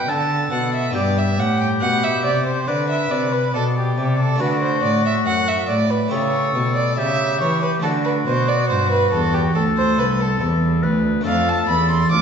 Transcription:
Already playing: harpsichord D4 A4, violin G5
0.08 harpsichord D3, cello D3, oboe A4, violin A5
0.51 harpsichord B2, cello B2, violin F#5
0.74 violin E5
0.90 harpsichord B3 D4 G4
0.94 cello G2, harpsichord G2, oboe G4, violin D5
1.18 violin E5
1.38 cello A2, harpsichord A2, violin F#5
1.61 violin G5
1.81 cello B2, harpsichord B2, violin F#5
2.04 violin E5
2.24 harpsichord C3, cello C3, violin D5
2.46 violin C5
2.67 cello D3, harpsichord D3, oboe B4, violin D5
2.90 violin E5
3.10 harpsichord C3, cello C3, violin D5
3.33 violin B4
3.54 harpsichord B2, cello B2, violin A4, oboe D5
3.77 violin G4
3.98 harpsichord C3, cello C3, violin G4
4.19 violin A4
4.35 harpsichord A3 D4 F#4
4.40 harpsichord D3, cello D3, oboe F#4, violin B4
4.62 violin C5
4.83 harpsichord A2, cello A2, violin D5
5.06 violin E5
5.26 harpsichord F#2, cello F#2, violin F#5
5.48 violin E5
5.69 harpsichord A2, cello A2, violin D5
5.90 violin B4
6.08 harpsichord A3 E4 G4, violin C#5
6.12 harpsichord C#3, cello C#3, oboe A4
6.55 cello B2, harpsichord B2
6.76 violin D5
6.98 harpsichord C#3, cello C#3, oboe G4, violin E5
7.41 cello E3, harpsichord E3, violin C#5
7.62 violin B4
7.80 harpsichord A3 D4 F#4, violin A4
7.84 harpsichord D3, cello D3, oboe F#4
8.05 violin B4
8.26 harpsichord B2, cello B2, violin C5
8.48 violin D5
8.69 harpsichord G2, cello G2, violin C5
8.92 violin B4
9.12 harpsichord E2, cello E2, violin A4
9.34 violin G4
9.54 harpsichord D2, cello D2, violin A4, oboe A4
9.77 violin C5
9.98 cello C2, harpsichord C2, violin B4
10.21 violin A4
10.41 cello E2, harpsichord E2, oboe A4
10.83 cello D2, harpsichord D2, oboe B4
11.21 harpsichord A3 D4 A4
11.25 harpsichord F2, cello F2, oboe A4, violin F5
11.49 violin A5
11.69 harpsichord E2, cello E2, violin B5
11.91 violin C6
12.12 harpsichord D2, cello D2, oboe F4, violin D6

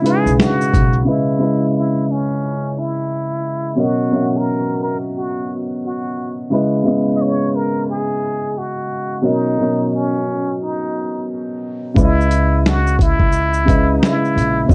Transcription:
Already playing: upright piano G#3 D#4 E4 B4
0.00 upright piano C#3 G#3 D#4
0.04 upright piano E4 B4, muted trumpet G#4, closed hi-hat, shaker
0.26 upright bass B1, shaker
0.39 muted trumpet F#4, finger snap, snare, shaker
0.61 shaker
0.74 upright bass B1, kick, closed hi-hat, shaker
0.93 shaker
1.04 upright piano C#3 G#3 E4 B4 D#5, muted trumpet E4
1.38 upright piano C#3 G#3 E4 B4 D#5
1.76 muted trumpet E4
2.11 muted trumpet C#4
2.79 muted trumpet E4
3.75 upright piano B2 F#3 C#4 A#4 D#5
3.81 muted trumpet F#4
4.11 upright piano B2 F#3 C#4 A#4 E5
4.21 upright piano F#5
4.37 muted trumpet A#4
4.82 muted trumpet A#4
5.17 muted trumpet F#4
5.85 muted trumpet F#4
6.50 upright piano C#3 G#3 E4 B4 D#5
6.83 upright piano C#3 G#3 B3 E4 D#5
7.16 muted trumpet D#5
7.21 muted trumpet C#5
7.55 muted trumpet A#4
7.90 muted trumpet G#4
8.58 muted trumpet F#4
9.21 upright piano B2 F#3 C#4 A#4 D#5
9.26 muted trumpet D#4
9.58 upright piano B2 F#3 C#4 A#4 D#5
9.94 muted trumpet C#4
10.63 muted trumpet D#4
11.94 upright bass C#2, upright piano C#3 G#3 E4 B4 D5, kick, shaker
11.99 muted trumpet E4
12.04 upright piano D#5
12.21 shaker
12.31 closed hi-hat, shaker
12.66 muted trumpet F#4, finger snap, snare, shaker
12.87 shaker
12.99 muted trumpet E4, kick, closed hi-hat, shaker
13.20 upright bass C#2, kick
13.32 shaker
13.54 shaker
13.65 upright piano C#3 G#3 E4 B4 D#5, kick
13.69 closed hi-hat, shaker
13.98 muted trumpet D#4
14.03 muted trumpet E4, finger snap, snare, shaker
14.25 shaker
14.36 upright bass A#1, closed hi-hat, shaker
14.67 upright bass B1, upright piano B2 F#3 C#4 A#4 D#5, kick
14.71 shaker

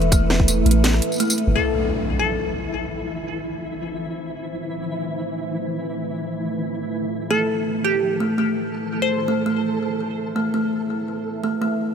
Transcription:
Already playing: 808-style bass E1, kalimba E3, ambient pad A3 E4 B4 E5, synth texture A3 B3
0.02 closed hi-hat
0.12 kalimba A3, kick, closed hi-hat, tambourine
0.30 cross-stick, snare
0.40 kick
0.48 closed hi-hat, tambourine
0.66 808-style bass A1, closed hi-hat
0.71 closed hi-hat
0.84 snare, closed hi-hat
0.94 cross-stick
1.02 closed hi-hat
1.12 tambourine
1.14 tambourine
1.16 kalimba A3, closed hi-hat, tambourine
1.22 tambourine
1.25 tambourine
1.27 tambourine
1.30 tambourine
1.38 closed hi-hat
1.47 808-style bass G1
1.55 synth texture E3 E4, ambient pad A3 E4 B4 C5, synth pluck A4, impact
2.19 synth pluck A4
7.30 kalimba A3, synth texture A4, synth pluck A4, ambient pad E5
7.84 synth pluck G4
8.20 kalimba A3
8.38 kalimba A3
9.02 synth pluck C5
9.28 kalimba A3
9.46 kalimba A3
10.36 kalimba A3
10.54 kalimba A3
11.44 kalimba A3
11.62 kalimba A3

